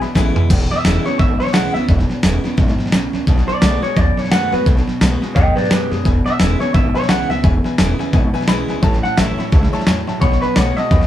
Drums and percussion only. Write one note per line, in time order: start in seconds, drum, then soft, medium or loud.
0.02 snare soft
0.15 kick loud
0.15 snare medium
0.15 hi-hat pedal medium
0.36 floor tom loud
0.50 kick loud
0.50 snare soft
0.50 crash loud
0.71 snare soft
0.85 snare loud
0.85 hi-hat pedal loud
1.06 snare soft
1.19 kick loud
1.19 snare soft
1.40 snare soft
1.47 snare soft
1.54 snare loud
1.54 hi-hat pedal medium
1.75 snare soft
1.88 kick loud
1.88 snare soft
1.99 snare soft
2.10 snare soft
2.23 snare loud
2.23 hi-hat pedal medium
2.44 snare soft
2.58 kick loud
2.58 snare soft
2.68 snare soft
2.79 snare soft
2.86 snare soft
2.92 snare loud
2.92 hi-hat pedal medium
3.13 snare soft
3.27 kick loud
3.27 snare soft
3.38 snare soft
3.48 snare soft
3.62 snare loud
3.62 hi-hat pedal medium
3.83 snare soft
3.96 kick loud
3.96 snare soft
4.17 snare soft
4.24 snare soft
4.32 snare loud
4.32 hi-hat pedal medium
4.53 snare soft
4.66 kick loud
4.66 snare soft
4.77 snare soft
4.88 snare soft
5.01 snare loud
5.01 hi-hat pedal loud
5.22 snare soft
5.36 kick loud
5.36 snare soft
5.57 snare soft
5.64 snare soft
5.71 snare loud
5.71 hi-hat pedal medium
5.92 snare soft
6.05 kick loud
6.05 snare soft
6.26 snare soft
6.40 snare loud
6.40 hi-hat pedal medium
6.60 snare soft
6.74 kick loud
6.74 snare soft
6.96 snare soft
7.02 snare soft
7.09 snare loud
7.09 hi-hat pedal medium
7.30 snare soft
7.44 kick loud
7.44 snare soft
7.64 snare soft
7.78 snare loud
7.78 hi-hat pedal loud
7.99 snare soft
8.13 kick loud
8.13 snare soft
8.34 snare soft
8.41 snare soft
8.48 snare loud
8.48 hi-hat pedal medium
8.69 snare soft
8.82 kick loud
8.82 snare soft
8.93 snare soft
9.04 snare soft
9.18 snare loud
9.18 hi-hat pedal loud
9.38 snare soft
9.52 kick loud
9.52 snare soft
9.63 snare soft
9.73 snare soft
9.80 snare soft
9.87 snare loud
9.87 hi-hat pedal medium
10.07 snare soft
10.21 kick loud
10.21 snare soft
10.32 snare soft
10.42 snare soft
10.56 snare loud
10.56 hi-hat pedal medium
10.77 snare soft
10.91 kick loud
10.91 snare soft
11.02 snare soft